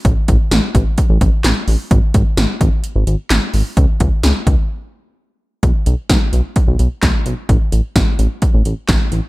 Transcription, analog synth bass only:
X:1
M:4/4
L:1/16
Q:1/4=129
K:Alyd
V:1 name="Analog synth bass" clef=bass
A,,, z A,,, z A,,, z A,,, z2 A,,, A,,, z A,,, z A,,, z | G,,, z G,,, z G,,, z G,,, z2 G,,, G,,, z G,,, z G,,, z | C,, z C,, z C,, z C,, z8 z | B,,, z B,,, z B,,, z B,,, z2 B,,, B,,, z B,,, z B,,, z |
A,,, z A,,, z A,,, z A,,, z2 A,,, A,,, z A,,, z A,,, z |]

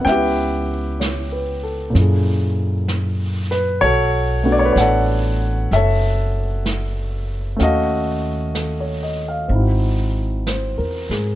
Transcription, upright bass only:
X:1
M:4/4
L:1/8
Q:"Swing" 1/4=64
K:Bdor
V:1 name="Upright bass" clef=bass
C,,4 F,,4 | B,,,2 A,,,2 F,,,4 | ^D,,4 G,,,2- (3G,,, E,, G,, |]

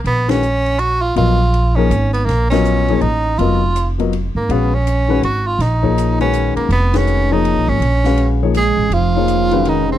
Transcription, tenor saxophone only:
X:1
M:3/4
L:1/16
Q:"Swing" 1/4=163
K:Bbphr
V:1 name="Tenor saxophone"
C2 D6 G2 F2 | F6 D4 C2 | B,2 D6 E4 | F4- F z4 z B,2 |
C2 D6 G2 F2 | E6 D4 B,2 | C2 D4 E4 D2- | D4- D z3 A4 |
F8 E2 D2 |]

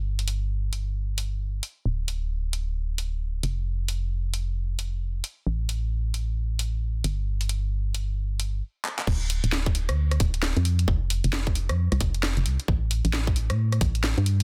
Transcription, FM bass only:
X:1
M:4/4
L:1/16
Q:"Swing 16ths" 1/4=133
K:F
V:1 name="FM bass" clef=bass
G,,,12- G,,,2 z2 | D,,,12- D,,,2 F,,,2- | F,,,12- F,,,2 z2 | A,,,12- A,,,2 G,,,2- |
G,,,12 z4 | D,,,3 D,,,4 D,,3 D,,,3 F,,3 | F,,,3 F,,,4 F,,2 C,, F,,,3 F,,, C,, z | A,,,3 A,,,4 A,,3 A,,,3 G,,3 |]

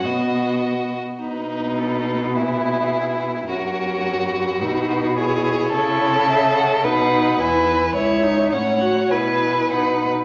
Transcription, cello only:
X:1
M:2/4
L:1/8
Q:1/4=106
K:B
V:1 name="Cello" clef=bass
B,,3 z | B,,4- | B,,4 | F,,4 |
B,,4 | [K:E] C,4 | B,,2 E,,2 | C,,2 A,,2 |
B,,2 B,, z |]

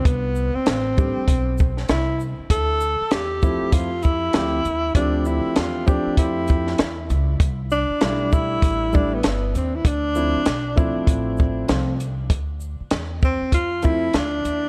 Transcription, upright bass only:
X:1
M:4/4
L:1/16
Q:"Swing 16ths" 1/4=98
K:Ddor
V:1 name="Upright bass" clef=bass
C,,3 z A,,,3 z B,,,4 C,,3 z | D,,3 z E,,3 z F,,4 D,,2 _E,,2 | D,,3 z E,,3 z F,,4 E,,2 ^C,,2 | C,,3 z B,,,4 A,,,4 G,,,2 _E,,2 |
D,,3 z B,,,3 z A,,,4 C,,4 | D,,3 z E,,3 z F,,4 D,,2 _E,,2 |]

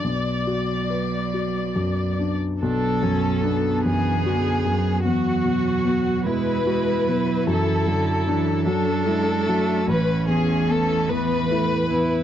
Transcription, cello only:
X:1
M:6/8
L:1/16
Q:3/8=50
K:Bdor
V:1 name="Cello" clef=bass
F,8- F,3 z | F,6 E,2 D,2 F,2 | F,6 G,2 G,2 F,2 | E,2 D,2 E,2 F,2 G,2 A,2 |
E,12 |]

